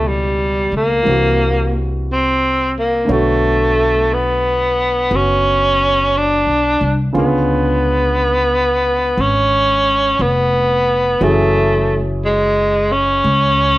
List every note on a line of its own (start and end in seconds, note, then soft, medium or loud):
0.00 0.68 C#2 medium
0.00 1.06 B2 soft
0.00 1.01 E3 soft
0.00 1.02 G3 soft
0.00 1.06 C#4 soft
0.00 1.07 G4 soft
0.08 0.74 G3 medium
0.72 1.03 C#2 medium
0.77 1.88 A#3 medium
1.03 3.05 C2 medium
1.03 3.07 E3 soft
1.03 3.08 G3 soft
1.03 3.09 A#3 soft
1.07 3.09 C4 soft
1.07 3.09 F#4 soft
2.12 2.73 C4 medium
2.79 3.14 A#3 medium
3.05 7.11 D3 medium
3.05 7.13 A3 soft
3.05 5.09 B3 soft
3.09 5.08 B1 medium
3.09 4.15 A3 medium
3.09 5.11 F#4 medium
3.09 7.15 C#5 soft
4.14 5.17 B3 medium
5.10 6.43 F#1 medium
5.10 7.12 B3 soft
5.10 7.15 F#4 soft
5.15 6.19 C#4 medium
6.17 6.99 D4 medium
6.47 6.78 B1 medium
6.81 7.12 C2 medium
7.13 9.14 C#2 medium
7.13 11.20 D3 medium
7.13 11.20 G#3 soft
7.13 11.20 B3 soft
7.13 11.20 C#4 soft
7.13 11.21 F4 medium
7.18 9.22 B3 medium
9.17 10.15 G#1 medium
9.17 10.23 C#4 medium
10.19 11.17 F1 medium
10.19 11.25 B3 medium
11.21 13.20 F#1 medium
11.21 13.78 E3 medium
11.21 13.78 F#3 medium
11.21 12.06 A3 medium
11.21 13.78 C#4 medium
11.21 13.78 E4 medium
11.21 13.78 G#4 medium
12.25 12.94 G#3 medium
12.92 13.78 C#4 loud
13.24 13.78 C#2 medium